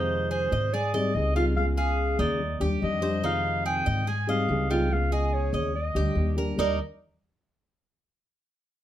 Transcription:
0.00 0.46 F2 medium
0.00 0.72 C3 medium
0.00 0.72 D#3 medium
0.00 0.73 G#3 medium
0.00 0.72 C4 medium
0.00 0.30 D#4 medium
0.00 0.74 F4 medium
0.00 0.30 C5 loud
0.31 0.51 G#4 medium
0.31 0.75 C5 loud
0.52 1.11 G#2 medium
0.52 0.73 D#5 medium
0.73 0.94 G#4 medium
0.73 0.94 D5 loud
0.73 muted nylon-string guitar stroke medium
0.94 1.13 G3 medium
0.94 1.14 C4 medium
0.94 1.14 D#4 medium
0.94 1.14 G#4 medium
0.94 1.16 D5 medium
0.94 1.35 D#5 medium
1.14 2.13 C#2 medium
1.14 1.35 G3 medium
1.14 1.35 C4 medium
1.14 1.35 D#4 medium
1.14 1.34 G#4 medium
1.14 1.36 D#5 loud
1.35 1.56 G3 medium
1.35 1.56 C4 medium
1.35 1.56 D#4 medium
1.35 1.76 F4 medium
1.35 1.56 G#4 medium
1.35 1.46 F5 medium
1.56 2.39 C#3 medium
1.56 2.39 G#3 medium
1.56 2.40 B3 medium
1.56 2.40 F4 medium
1.56 2.40 G#4 medium
1.56 1.66 F5 loud
1.77 2.18 G#4 medium
1.77 2.16 F5 loud
2.19 2.58 D#2 loud
2.19 2.60 D#4 medium
2.19 2.59 D5 medium
2.40 muted nylon-string guitar stroke medium
2.60 2.80 D#2 medium
2.60 2.81 G3 medium
2.60 2.81 D4 medium
2.60 2.81 G4 medium
2.60 3.02 G4 medium
2.81 3.81 F2 medium
2.81 3.02 D#3 soft
2.81 3.02 G3 medium
2.81 3.02 D4 medium
2.81 3.01 G4 medium
2.81 3.21 D#5 loud
3.02 3.23 G3 medium
3.02 3.23 D4 medium
3.02 3.22 G4 medium
3.02 3.23 C5 medium
3.22 4.06 C3 medium
3.22 4.06 D#3 medium
3.22 4.07 G#3 medium
3.22 4.06 C4 medium
3.22 3.64 D#4 medium
3.22 4.07 F4 medium
3.22 3.63 F5 loud
3.66 3.86 G#4 medium
3.66 4.10 G5 loud
3.86 4.45 G#2 loud
3.86 4.07 D#5 medium
4.07 4.28 G#4 medium
4.07 4.29 G#5 medium
4.07 muted nylon-string guitar stroke medium
4.27 4.48 G3 medium
4.27 4.48 C4 medium
4.27 4.49 D#4 medium
4.27 4.48 G#4 medium
4.27 4.69 D#5 medium
4.27 4.72 F5 loud
4.49 5.47 C#2 medium
4.49 4.69 G3 medium
4.49 4.69 C4 soft
4.49 4.69 D#4 medium
4.49 4.69 G#4 medium
4.70 4.90 G3 medium
4.70 4.91 C4 medium
4.70 4.90 D#4 medium
4.70 5.11 F4 medium
4.70 4.90 G#4 medium
4.70 4.94 G5 medium
4.89 5.73 C#3 medium
4.89 5.74 G#3 medium
4.89 5.74 B3 medium
4.89 5.75 F4 medium
4.89 5.75 G#4 medium
4.89 5.12 F5 medium
5.12 5.53 G#4 medium
5.12 5.35 D#5 medium
5.33 5.54 C#5 medium
5.53 5.92 D#2 medium
5.53 5.74 C#5 medium
5.53 5.94 D#5 medium
5.74 6.34 D#5 medium
5.74 muted nylon-string guitar stroke medium
5.95 6.15 D2 medium
5.95 6.16 G3 medium
5.95 6.16 D4 medium
5.95 6.16 G4 medium
5.95 6.37 G4 medium
6.15 6.53 D#2 medium
6.15 6.36 D#3 medium
6.15 6.37 G3 medium
6.15 6.37 D4 medium
6.15 6.36 G4 medium
6.37 6.57 G3 medium
6.37 6.58 D4 medium
6.37 6.57 G4 medium
6.37 6.58 A#4 medium
6.57 6.78 D#2 medium
6.57 6.75 D#3 medium
6.57 6.75 G3 medium
6.57 6.75 D4 medium
6.57 6.78 D#4 medium
6.57 6.76 G4 medium
6.57 6.78 A#4 medium
6.57 6.79 D5 loud
6.57 6.78 D#5 medium

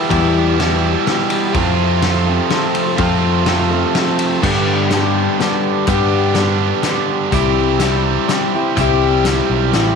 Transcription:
0.00 0.10 E4 soft
0.00 0.10 G4 medium
0.09 1.52 E2 medium
0.09 0.95 E2 medium
0.09 1.53 B2 medium
0.09 0.58 E3 medium
0.09 0.56 G3 medium
0.09 0.58 B3 medium
0.09 0.59 E4 medium
0.09 0.59 G4 medium
0.09 kick loud
0.09 ride medium
0.57 1.05 G3 medium
0.57 1.07 B3 medium
0.57 1.07 E4 medium
0.57 snare medium
0.57 ride medium
0.61 1.08 G4 medium
1.07 1.55 G3 medium
1.07 1.56 B3 medium
1.07 1.56 E4 medium
1.07 1.57 G4 medium
1.07 snare medium
1.07 ride medium
1.30 ride medium
1.53 2.95 F2 medium
1.53 2.39 F2 loud
1.53 2.97 C3 medium
1.53 2.02 F3 medium
1.53 2.97 A3 medium
1.53 kick loud
1.53 ride medium
1.57 2.03 C4 medium
1.57 2.04 F4 medium
1.57 2.04 A4 medium
2.02 2.27 F3 medium
2.02 2.28 C4 medium
2.02 2.26 F4 medium
2.02 2.25 A4 medium
2.02 snare medium
2.02 ride medium
2.26 2.50 C4 soft
2.26 2.51 F4 soft
2.26 2.51 A4 soft
2.49 2.96 F3 medium
2.49 2.97 C4 medium
2.49 2.98 F4 medium
2.49 snare medium
2.49 ride medium
2.53 2.98 A4 medium
2.75 ride medium
2.97 4.41 F2 medium
2.97 3.84 F2 medium
2.97 4.42 C3 medium
2.97 3.44 F3 medium
2.97 4.42 A3 loud
2.97 3.45 C4 medium
2.97 3.47 F4 medium
2.97 3.48 A4 medium
2.97 kick medium
2.97 ride medium
3.45 3.70 F3 medium
3.45 3.71 C4 medium
3.45 3.72 F4 medium
3.45 snare medium
3.45 ride medium
3.49 3.69 A4 medium
3.71 3.94 C4 soft
3.71 3.96 F4 soft
3.71 3.95 A4 soft
3.95 4.43 F3 medium
3.95 4.43 C4 medium
3.95 4.43 F4 medium
3.95 4.44 A4 medium
3.95 snare medium
3.95 ride medium
4.19 ride medium
4.42 4.91 G2 medium
4.42 5.28 G2 medium
4.42 4.91 D3 medium
4.42 4.90 G3 medium
4.42 4.91 B3 medium
4.42 4.92 D4 medium
4.42 4.94 G4 medium
4.42 kick medium
4.42 crash medium
4.90 5.38 G3 medium
4.90 5.38 B3 medium
4.90 5.40 D4 medium
4.90 5.42 G4 medium
4.90 snare medium
4.90 closed hi-hat medium
5.38 5.87 G3 medium
5.38 5.86 B3 medium
5.38 5.87 D4 medium
5.38 5.89 G4 medium
5.38 snare medium
5.38 closed hi-hat medium
5.86 6.35 G2 medium
5.86 6.72 G2 medium
5.86 6.36 D3 medium
5.86 6.35 G3 medium
5.86 6.36 B3 medium
5.86 6.36 D4 medium
5.86 6.39 G4 medium
5.86 kick medium
5.86 closed hi-hat medium
6.35 6.82 G3 medium
6.35 6.83 B3 medium
6.35 6.83 D4 medium
6.35 snare medium
6.35 closed hi-hat medium
6.40 6.86 G4 medium
6.82 7.32 G3 medium
6.82 7.32 B3 medium
6.82 7.33 D4 medium
6.82 7.34 G4 medium
6.82 snare medium
6.82 closed hi-hat medium
7.32 8.17 C2 medium
7.32 7.81 C3 medium
7.32 8.75 E3 medium
7.32 7.79 G3 medium
7.32 7.79 C4 medium
7.32 7.81 E4 medium
7.32 7.83 G4 medium
7.32 kick loud
7.32 closed hi-hat medium
7.79 8.28 G3 medium
7.79 8.28 C4 medium
7.79 8.29 E4 medium
7.79 8.31 G4 medium
7.79 snare medium
7.79 closed hi-hat medium
8.28 8.53 G3 medium
8.28 8.53 C4 medium
8.28 8.54 E4 medium
8.28 8.53 G4 medium
8.28 snare medium
8.28 closed hi-hat medium
8.54 8.78 C4 soft
8.54 8.78 E4 soft
8.54 8.78 G4 soft
8.76 9.40 C2 medium
8.76 9.26 C3 medium
8.76 9.95 E3 medium
8.76 9.25 G3 medium
8.76 9.25 C4 medium
8.76 kick medium
8.76 closed hi-hat medium
8.80 9.26 E4 medium
8.80 9.29 G4 medium
9.25 9.74 G3 medium
9.25 9.74 C4 medium
9.25 9.75 E4 medium
9.25 snare medium
9.25 closed hi-hat medium
9.29 9.76 G4 medium
9.50 9.71 B1 medium
9.73 9.95 A1 medium
9.73 9.95 G3 medium
9.73 9.95 C4 medium
9.73 9.95 E4 medium
9.73 9.95 G4 medium
9.73 snare medium
9.73 closed hi-hat medium

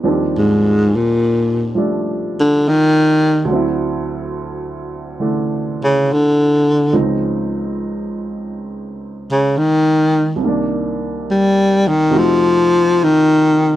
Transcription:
0.03 3.48 D#2 soft
0.03 3.48 D#3 soft
0.03 1.73 F3 soft
0.03 1.75 G3 soft
0.03 3.49 C4 soft
0.03 1.77 D4 medium
0.38 0.97 G#2 medium
0.95 1.78 A#2 medium
1.75 3.48 F3 soft
1.75 3.48 G3 soft
1.75 3.49 A3 soft
1.75 3.49 D4 soft
2.40 2.70 D3 medium
2.69 3.51 D#3 medium
3.45 6.93 D2 medium
3.45 5.18 D3 medium
3.50 6.95 F#3 soft
3.50 6.92 C4 soft
3.55 6.98 E4 medium
5.20 6.94 D3 soft
5.20 6.94 E3 soft
5.20 6.95 A3 soft
5.20 6.95 D4 soft
5.84 6.14 C#3 medium
6.13 6.97 D3 medium
6.93 10.39 C#2 medium
6.93 10.39 C#3 medium
6.93 10.39 F3 soft
6.93 10.39 C4 soft
6.93 10.40 D#4 medium
9.31 9.59 C#3 medium
9.58 10.42 D#3 medium
10.36 12.09 C2 soft
10.36 12.10 C3 soft
10.42 12.12 D#3 soft
10.42 12.13 A#3 soft
10.48 12.15 D4 medium
11.31 11.89 G3 medium
11.88 12.20 D#3 medium
12.10 13.76 F2 medium
12.10 13.76 C3 medium
12.10 13.76 F#4 medium
12.15 13.05 F3 medium
12.15 13.76 A3 medium
12.15 13.76 D#4 medium
13.04 13.76 D#3 medium

